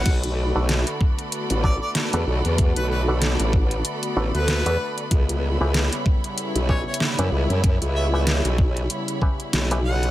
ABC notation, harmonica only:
X:1
M:4/4
L:1/16
Q:"Swing 16ths" 1/4=95
K:Bm
V:1 name="Harmonica"
z8 z2 d d z4 | z B B z8 B4 z | z8 z2 c c z4 | z2 e e z8 z2 f2 |]